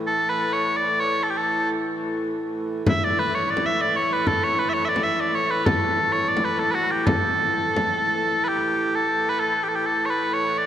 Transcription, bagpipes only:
0.07 0.29 A4 medium
0.29 0.53 B4 medium
0.53 0.77 C#5 medium
0.77 1.00 D5 medium
1.00 1.23 C#5 loud
1.23 1.30 A4 medium
1.30 1.37 G4 medium
1.37 1.69 A4 medium
2.89 3.04 E5 loud
3.04 3.19 D5 loud
3.19 3.35 B4 loud
3.35 3.51 C#5 medium
3.51 3.66 D5 medium
3.66 3.81 E5 medium
3.81 3.97 D5 loud
3.97 4.13 C#5 medium
4.13 4.28 B4 medium
4.28 4.44 A4 loud
4.44 4.59 C#5 medium
4.59 4.69 B4 medium
4.69 4.74 E5 medium
4.74 4.85 C#5 medium
4.85 5.03 D5 loud
4.85 4.89 E5 loud
5.03 5.20 E5 medium
5.20 5.35 D5 loud
5.35 5.51 C#5 medium
5.51 5.66 B4 medium
5.66 6.12 A4 medium
6.12 6.29 C#5 medium
6.29 6.45 D5 medium
6.45 6.60 B4 medium
6.59 6.71 A4 medium
6.71 6.91 F#4 medium
6.71 6.75 B4 medium
6.91 7.06 G4 medium
7.06 8.44 A4 medium
8.44 8.95 G4 medium
8.44 8.48 B4 medium
8.95 9.29 A4 medium
9.29 9.40 B4 medium
9.40 9.63 A4 medium
9.63 9.68 G4 medium
9.68 9.75 A4 medium
9.75 9.86 G4 medium
9.86 10.06 A4 medium
10.06 10.10 C#5 medium
10.10 10.33 B4 medium
10.33 10.58 C#5 medium
10.58 10.66 D5 medium

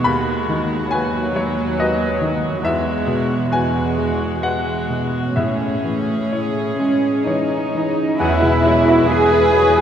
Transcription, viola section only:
0.00 0.88 G#3 medium
0.00 2.61 F#4 soft
0.93 2.65 F#3 medium
2.64 3.47 G#3 soft
2.64 3.47 F#4 soft
3.51 4.40 G#3 soft
3.51 4.40 F#4 soft
4.42 5.35 G#3 soft
4.42 5.35 F#4 soft
5.37 7.96 C#4 soft
5.37 8.00 G#4 soft
8.19 8.40 F#3 soft
8.19 8.41 F#4 soft
8.41 8.64 G#3 soft
8.41 8.64 E4 soft
8.65 8.87 F#3 soft
8.65 8.87 F#4 soft
8.85 9.08 G#3 soft
8.85 9.08 E4 soft
9.07 9.28 F#3 soft
9.07 9.29 F#4 soft
9.29 9.53 G#3 soft
9.29 9.52 E4 soft
9.52 9.75 F#3 soft
9.52 9.75 F#4 soft
9.74 9.81 G#3 soft
9.74 9.81 E4 soft

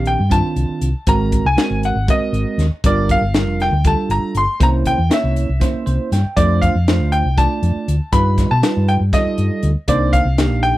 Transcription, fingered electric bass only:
0.00 0.15 A#1 medium
0.20 0.40 G2 medium
0.56 0.67 C2 medium
0.81 0.92 C2 medium
1.07 1.39 G#1 medium
1.45 1.56 C2 medium
1.70 1.92 G#1 medium
1.95 2.06 G#1 medium
2.20 muted fingered electric bass stroke soft
2.33 2.44 G#1 medium
2.58 2.69 D#2 medium
2.71 muted fingered electric bass stroke soft
2.84 3.16 G1 medium
3.21 3.47 G1 medium
3.47 3.68 F1 medium
3.71 3.93 D2 medium
4.09 4.20 G1 medium
4.35 4.46 G1 medium
4.61 4.92 C2 medium
4.98 5.09 E2 medium
5.24 5.45 C2 medium
5.49 5.59 C2 medium
5.74 muted fingered electric bass stroke soft
5.87 5.97 C2 medium
6.12 6.22 G2 medium
6.25 muted fingered electric bass stroke soft
6.37 6.68 F2 medium
6.75 7.00 F2 medium
7.00 7.21 D2 medium
7.25 7.46 C2 medium
7.63 7.73 F2 medium
7.75 muted fingered electric bass stroke soft
7.88 7.98 D2 medium
8.13 8.44 G2 medium
8.51 8.61 B2 medium
8.77 8.97 G2 medium
9.00 9.11 G2 medium
9.26 muted fingered electric bass stroke soft
9.38 9.49 G2 medium
9.63 9.74 D2 medium
9.76 muted fingered electric bass stroke soft
9.88 10.20 C2 loud
10.25 10.50 C2 medium
10.50 10.72 A#1 medium

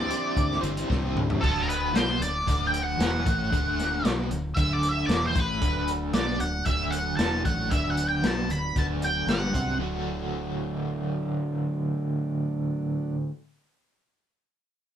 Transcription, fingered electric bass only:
0.00 0.12 D2 medium
0.37 0.57 D2 medium
0.63 0.83 G1 medium
0.90 1.13 C2 medium
1.15 1.39 D2 medium
1.43 1.91 D1 medium
1.94 2.18 B1 medium
2.20 2.44 D1 medium
2.47 2.96 D1 medium
2.99 3.23 E1 medium
3.26 3.50 A1 medium
3.53 4.01 D1 medium
4.04 4.28 B1 medium
4.31 4.55 D1 medium
4.57 5.05 D1 medium
5.09 5.33 E1 medium
5.36 5.59 A1 medium
5.62 6.10 D1 medium
6.14 6.38 B1 medium
6.40 6.64 D1 medium
6.66 7.14 D1 medium
7.18 7.42 E1 medium
7.45 7.69 A1 medium
7.71 8.19 D1 medium
8.23 8.47 B1 medium
8.49 8.73 D1 medium
8.76 9.24 D1 medium
9.27 9.51 G1 medium
9.54 9.78 C2 medium
9.79 13.17 D1 medium

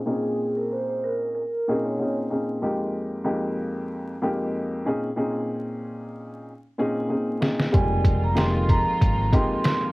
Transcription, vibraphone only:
0.08 0.55 G#4 loud
0.57 0.70 A#4 medium
0.72 0.88 C5 medium
0.90 1.02 C5 medium
1.04 1.32 A#4 medium
1.35 1.82 A#4 medium
1.85 2.14 C#5 medium
7.74 8.20 G#5 loud
8.24 8.36 A#5 medium
8.38 8.54 C6 medium
8.55 8.68 C6 medium
8.69 9.29 A#5 medium
9.33 9.80 C6 medium

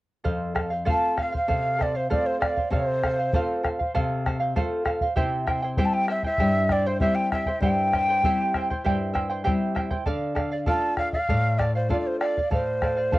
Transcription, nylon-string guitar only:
0.25 0.85 F2 medium
0.86 1.35 A3 soft
0.86 1.36 C4 soft
0.86 1.36 F4 soft
1.48 2.07 C3 medium
2.10 2.59 A3 soft
2.10 2.59 C4 soft
2.10 2.59 F4 soft
2.70 3.30 C3 medium
3.33 3.81 A3 soft
3.33 3.82 C4 soft
3.33 3.82 F4 soft
3.95 4.54 C3 medium
4.56 5.04 A3 soft
4.56 5.05 C4 soft
4.56 5.05 F4 soft
5.18 5.76 C3 medium
5.77 6.26 G3 soft
5.77 6.27 C4 soft
5.77 6.27 E4 soft
6.40 6.99 G2 medium
7.00 7.49 G3 soft
7.00 7.49 C4 soft
7.00 7.49 E4 soft
7.61 8.20 G2 medium
8.23 8.72 G3 soft
8.23 8.72 C4 soft
8.23 8.73 E4 soft
8.85 9.43 G2 medium
9.46 9.94 G3 soft
9.46 9.94 C4 soft
9.46 9.95 E4 soft
10.07 10.66 D3 medium
10.67 11.16 A3 soft
10.67 11.16 D4 soft
10.67 11.16 F4 soft
11.30 11.89 A2 medium
11.89 12.39 A3 soft
11.89 12.39 D4 soft
11.89 12.39 F4 soft
12.51 13.10 A2 soft
13.11 13.19 A3 soft
13.11 13.19 D4 soft
13.11 13.19 F4 soft

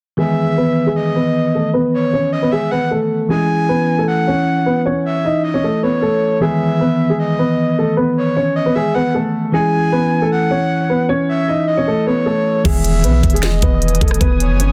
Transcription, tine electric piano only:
0.17 3.26 D#3 medium
0.17 3.25 E3 medium
0.17 3.26 B3 medium
0.17 3.27 B4 medium
3.29 6.37 E3 medium
3.29 6.38 C#4 medium
3.29 6.38 E4 medium
6.40 9.49 D#3 medium
6.40 9.49 E3 medium
6.40 9.49 B3 medium
6.40 9.50 B4 medium
9.52 12.60 E3 medium
9.52 12.61 C#4 medium
9.52 12.62 E4 medium
12.64 14.72 D#3 medium
12.64 14.72 E3 medium
12.64 14.72 B3 medium
12.64 14.72 G#4 medium

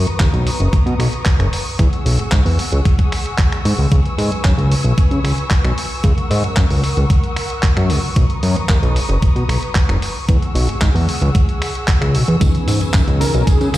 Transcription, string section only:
0.00 1.77 B4 medium
0.00 1.77 A#5 medium
0.00 1.76 C#6 medium
0.00 1.77 D#6 medium
1.79 3.89 G#4 medium
1.79 3.89 F#5 medium
1.79 13.78 C#6 medium
1.79 8.12 E6 medium
3.92 6.02 B4 medium
3.92 6.02 G#5 medium
6.04 8.14 A#4 medium
6.04 8.14 F#5 medium
8.17 10.27 B4 medium
8.17 10.27 A#5 medium
8.17 10.27 D#6 medium
10.29 12.39 G#4 medium
10.29 12.39 F#5 medium
10.29 13.78 E6 medium
12.40 13.78 B4 medium
12.40 13.78 G#5 medium

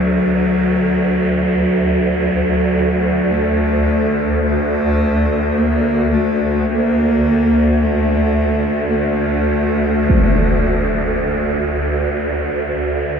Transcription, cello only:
0.00 2.17 F#3 loud
2.17 3.32 F#3 medium
3.30 4.43 A3 medium
4.44 5.59 A3 loud
5.58 6.15 A#3 medium
6.14 6.71 A3 medium
6.70 7.85 A#3 medium
7.83 8.88 A3 medium
8.88 8.96 A#3 medium
8.94 11.78 A3 medium

